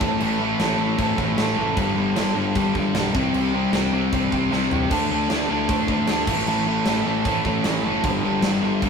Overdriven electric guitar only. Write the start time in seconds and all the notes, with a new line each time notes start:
0.00 A2 E3 A3
0.20 A2 E3 A3
0.39 A2 E3 A3
0.59 A2 E3 A3
0.78 A2 E3 A3
0.96 A2 E3 A3
1.16 A2 E3 A3
1.36 A2 E3 A3
1.56 A2 E3 A3
1.76 G2 D3 G3
1.96 G2 D3 G3
2.16 G2 D3 G3
2.35 G2 D3 G3
2.56 G2 D3 G3
2.74 G2 D3 G3
2.93 G2 D3 G3
3.13 C3 G3 C4
3.34 C3 G3 C4
3.53 C3 G3 C4
3.73 C3 G3 C4
3.93 C3 G3 C4
4.13 C3 G3 C4
4.31 C3 G3 C4
4.51 C3 G3 C4
4.72 C3 G3 C4
4.90 D3 A3 D4
5.10 D3 A3 D4
5.29 D3 A3 D4
5.48 D3 A3 D4
5.69 D3 A3 D4
5.87 D3 A3 D4
6.07 D3 A3 D4
6.27 A2 E3 A3
6.47 A2 E3 A3
6.65 A2 E3 A3
6.86 A2 E3 A3
7.06 A2 E3 A3
7.26 A2 E3 A3
7.45 A2 E3 A3
7.65 A2 E3 A3
7.85 A2 E3 A3
8.05 G2 D3 G3
8.24 G2 D3 G3
8.42 G2 D3 G3
8.61 G2 D3 G3
8.81 G2 D3 G3